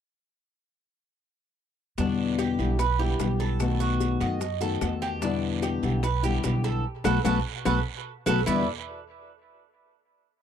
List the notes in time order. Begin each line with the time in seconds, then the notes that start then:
1.98 E2 B2 D3 G3 B3 D4 E4, high bongo, long guiro, maracas
2.39 G4, high bongo, short guiro, claves, maracas
2.59 B1 D3 G3 B3 E4, high bongo, short guiro, maracas
2.79 B4, muted nylon-string guitar stroke, high bongo, long guiro, claves, maracas
2.99 D3 G3 B3 E4 G4, high bongo
3.20 B1 D3 G3 B3 E4, high bongo, low bongo, short guiro, maracas
3.40 A4, high bongo, short guiro, maracas
3.60 B2 D#3 A3 B3 F#4, high bongo, long guiro, claves, maracas
3.80 F#4, maracas
4.00 high bongo, short guiro, maracas
4.20 F#2 D#3 A3 B3 F#4 D#5, high bongo, short guiro, claves, maracas
4.41 muted nylon-string guitar stroke, high bongo, long guiro, maracas
4.60 D#3 A3 B3 F#4 A4, high bongo, maracas
4.81 E2 D#3 A3 B3 F#4, high bongo, low bongo, short guiro, claves, maracas
5.02 G4, high bongo, short guiro, maracas
5.22 B2 D3 G3 B3 D4 E4, high bongo, long guiro, maracas
5.62 G4, high bongo, short guiro, claves, maracas
5.82 B1 D3 G3 B3 E4, high bongo, short guiro, maracas
6.03 B4, muted nylon-string guitar stroke, high bongo, long guiro, claves, maracas
6.23 D3 G3 B3 E4 G4, high bongo, maracas
6.43 B1 D3 G3 B3 E4, high bongo, low bongo, short guiro, maracas
6.64 A4, high bongo, short guiro, maracas
7.04 B1 F#3 A3 B3 F#4 A4 B4, low bongo, long guiro, claves, maracas
7.24 B1 F#3 A3 B3 F#4 A4 B4, low bongo, long guiro, claves, maracas
7.65 B1 F#3 A3 B3 F#4 A4 B4, low bongo, long guiro, claves, maracas
8.26 B1 F#3 A3 B3 F#4 A4 B4, low bongo, long guiro, claves, maracas
8.46 E2 B2 D3 G3 B3 E4 B4 D5, low bongo, long guiro, claves, maracas